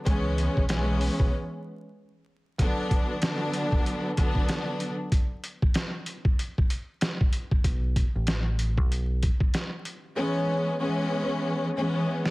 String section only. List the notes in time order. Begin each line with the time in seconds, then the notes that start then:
0.05 E3 G#3 B3 C#4
0.69 E3 G#3 B3 C#4
2.60 D3 F#3 B3 D4
3.21 D3 F#3 B3 D4
4.17 D3 F#3 B3 D4
10.16 E3 G#3 B3 C#4
10.79 E3 G#3 B3 C#4
11.76 E3 G#3 B3 C#4